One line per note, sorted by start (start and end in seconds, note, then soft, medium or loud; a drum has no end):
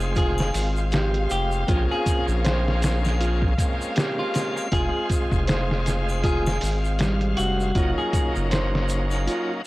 0.00 0.51 F1 loud
0.00 0.50 G#3 medium
0.00 0.50 C4 medium
0.00 0.51 F4 medium
0.00 0.51 G#4 loud
0.00 0.12 C5 medium
0.00 9.67 F5 medium
0.00 triangle medium
0.00 shaker medium
0.16 0.40 F4 medium
0.16 0.70 G#4 medium
0.16 kick loud
0.16 closed hi-hat medium
0.16 shaker soft
0.38 snare medium
0.38 triangle medium
0.53 1.27 G#1 loud
0.53 1.64 G#3 medium
0.53 1.64 C4 medium
0.53 1.65 F4 medium
0.53 open hi-hat medium
0.53 shaker medium
0.77 shaker soft
0.92 1.65 G4 medium
0.92 snare loud
0.92 closed hi-hat medium
0.92 shaker soft
1.14 closed hi-hat soft
1.30 1.65 F1 medium
1.30 1.84 G4 medium
1.30 closed hi-hat medium
1.30 shaker medium
1.52 shaker soft
1.66 1.87 A#1 loud
1.66 3.53 A#3 medium
1.66 3.53 C4 medium
1.66 3.54 C#4 medium
1.66 2.41 F4 medium
1.66 3.54 G#4 loud
1.66 kick loud
1.66 closed hi-hat medium
1.66 shaker soft
1.91 2.24 G#4 medium
2.06 kick medium
2.06 closed hi-hat medium
2.06 shaker medium
2.28 3.55 A#1 loud
2.28 shaker medium
2.45 3.17 C5 loud
2.45 snare loud
2.45 closed hi-hat medium
2.45 shaker soft
2.68 snare soft
2.82 snare loud
2.82 closed hi-hat medium
2.82 shaker medium
3.05 snare soft
3.05 triangle medium
3.05 shaker medium
3.21 3.44 F4 medium
3.21 closed hi-hat medium
3.21 shaker soft
3.42 kick medium
3.58 4.69 G#3 medium
3.58 4.68 A#3 medium
3.58 4.68 C4 medium
3.58 4.69 C#4 medium
3.58 kick loud
3.58 closed hi-hat medium
3.58 shaker medium
3.81 shaker medium
3.96 4.69 G4 medium
3.96 snare loud
3.96 closed hi-hat medium
3.96 shaker soft
4.19 4.68 F4 medium
4.34 snare medium
4.34 closed hi-hat medium
4.34 triangle medium
4.34 shaker medium
4.57 triangle medium
4.57 shaker medium
4.72 4.91 F1 loud
4.72 6.58 G#3 medium
4.72 6.58 C4 medium
4.72 5.45 F4 medium
4.72 6.58 F4 medium
4.72 5.07 G#4 medium
4.72 6.59 G#4 loud
4.72 kick loud
4.72 closed hi-hat medium
4.72 shaker soft
5.09 kick loud
5.09 closed hi-hat medium
5.09 shaker loud
5.31 6.59 F1 loud
5.31 kick medium
5.31 shaker soft
5.47 6.21 C5 loud
5.47 snare loud
5.47 closed hi-hat loud
5.47 shaker soft
5.71 snare soft
5.86 snare soft
5.86 closed hi-hat medium
5.86 shaker medium
6.09 triangle medium
6.09 shaker medium
6.24 6.48 F4 medium
6.24 6.77 G#4 loud
6.24 kick loud
6.24 closed hi-hat medium
6.24 shaker soft
6.46 snare medium
6.46 triangle medium
6.61 7.35 G#1 loud
6.61 7.71 G#3 medium
6.61 7.72 C4 medium
6.61 7.72 F5 medium
6.61 open hi-hat medium
6.61 shaker medium
6.85 shaker medium
6.99 7.72 G3 medium
6.99 snare loud
6.99 closed hi-hat medium
6.99 shaker soft
7.21 closed hi-hat soft
7.37 7.72 F1 medium
7.37 7.91 F#4 loud
7.37 closed hi-hat medium
7.37 shaker medium
7.60 shaker soft
7.75 7.95 F#1 medium
7.75 9.62 F#3 loud
7.75 9.61 A#3 loud
7.75 9.62 C#4 medium
7.75 9.62 D#4 medium
7.75 8.48 F4 medium
7.75 kick loud
7.75 closed hi-hat medium
7.75 shaker soft
7.98 8.31 G#4 medium
8.13 kick loud
8.13 closed hi-hat medium
8.13 shaker medium
8.36 9.28 F#1 loud
8.36 shaker soft
8.51 9.24 C5 loud
8.51 snare loud
8.51 closed hi-hat medium
8.51 shaker soft
8.75 snare soft
8.89 closed hi-hat medium
8.89 shaker medium
9.11 triangle medium
9.11 shaker soft
9.27 9.51 F4 medium
9.27 closed hi-hat medium
9.27 shaker soft